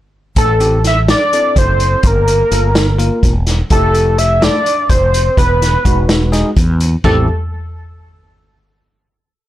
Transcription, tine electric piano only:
0.60 C4 E4 G4
1.33 C4 E4 A4
2.51 A#3 F4 A4
2.98 A#3 F4 A#4
3.71 A3 E4 G4
4.41 A3 E4 A4
5.85 G#3 D#4 F#4
6.32 G#3 D#4 G#4
7.05 C4 E4 G4

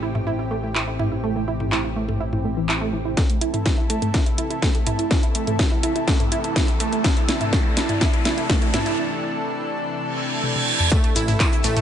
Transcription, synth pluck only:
0.03 E4
0.15 E4
0.27 E4
0.39 E4
0.51 A3
0.63 A3
0.75 E4
0.87 E4
0.99 E4
1.12 E4
1.24 A3
1.36 A3
1.48 E4
1.60 E4
1.72 E4
1.84 E4
1.96 A3
2.08 A3
2.20 E4
2.33 E4
2.45 A3
2.57 E3
2.69 E4
2.81 A3
2.93 E3
3.05 E4
3.17 A3
3.29 A3
3.41 E4
3.54 E4
3.65 E4
3.78 E4
3.90 A3
4.02 A3
4.14 E4
4.26 E4
4.38 E4
4.50 E4
4.62 A3
4.75 A3
4.87 E4
4.99 E4
5.11 E4
5.23 E4
5.35 A3
5.47 A3
5.59 E4
5.72 E4
5.83 E4
5.96 E4
6.08 A3
6.20 A3
6.32 E4
6.44 E4
6.56 E4
6.68 E4
6.80 A3
6.92 A3
7.04 E4
7.17 E4
7.29 E4
7.41 E4
7.53 A3
7.65 A3
7.77 E4
7.89 E4
8.01 E4
8.14 E4
8.25 E4
8.38 E4
8.50 A3
8.62 A3
8.74 E4
8.86 E4
10.92 A3
11.04 A3
11.16 E4
11.28 E4
11.40 E4
11.52 E4
11.64 A3
11.77 A3

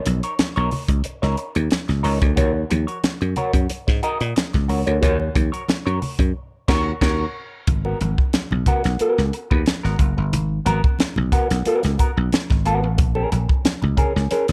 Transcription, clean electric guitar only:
0.06 muted clean electric guitar stroke
0.24 D#4 A#4 C#5
0.40 muted clean electric guitar stroke
0.56 D#4 A#4 C#5
0.72 muted clean electric guitar stroke
0.90 muted clean electric guitar stroke
1.05 muted clean electric guitar stroke
1.22 D#4 A#4 C#5
1.38 muted clean electric guitar stroke
1.55 muted clean electric guitar stroke
1.71 muted clean electric guitar stroke
1.88 muted clean electric guitar stroke
2.03 D#4 A#4 C#5
2.21 muted clean electric guitar stroke
2.36 F#4 A#4 C#5
2.54 muted clean electric guitar stroke
2.70 muted clean electric guitar stroke
2.87 F#4 A#4 C#5
3.21 muted clean electric guitar stroke
3.37 F#4 A#4 C#5
3.69 muted clean electric guitar stroke
3.87 muted clean electric guitar stroke
4.03 F#4 A#4 D#5
4.20 muted clean electric guitar stroke
4.36 muted clean electric guitar stroke
4.53 muted clean electric guitar stroke
4.68 F#4 A#4 C#5
4.86 F#4 A#4 C#5
5.01 F#4 A#4 C#5
5.35 muted clean electric guitar stroke
5.52 F#4 A#4 C#5
5.68 muted clean electric guitar stroke
5.86 F#4 A#4 C#5
6.01 muted clean electric guitar stroke
6.19 muted clean electric guitar stroke
6.68 F#4 A#4 C#5
7.01 F#4 A#4 C#5
7.68 muted clean electric guitar stroke
7.85 B3 F#4 A#4
8.02 muted clean electric guitar stroke
8.18 muted clean electric guitar stroke
8.52 muted clean electric guitar stroke
8.67 B3 F#4 A#4
8.85 muted clean electric guitar stroke
9.00 B3 F#4 A#4
9.33 muted clean electric guitar stroke
9.51 B3 F#4 B4
9.66 muted clean electric guitar stroke
9.83 B3 F#4 A#4
10.00 muted clean electric guitar stroke
10.17 muted clean electric guitar stroke
10.66 B3 F#4 A#4
11.17 muted clean electric guitar stroke
11.32 B3 F#4 A#4
11.66 B3 F#4 A#4
11.84 muted clean electric guitar stroke
11.99 B3 F#4 A#4
12.17 muted clean electric guitar stroke
12.32 muted clean electric guitar stroke
12.50 muted clean electric guitar stroke
12.65 B3 F#4 A#4
12.83 muted clean electric guitar stroke
12.97 muted clean electric guitar stroke
13.15 C#4 G#4 A#4
13.49 muted clean electric guitar stroke
13.82 muted clean electric guitar stroke
13.97 C#4 G#4 A#4
14.16 muted clean electric guitar stroke
14.31 C#4 G#4 A#4

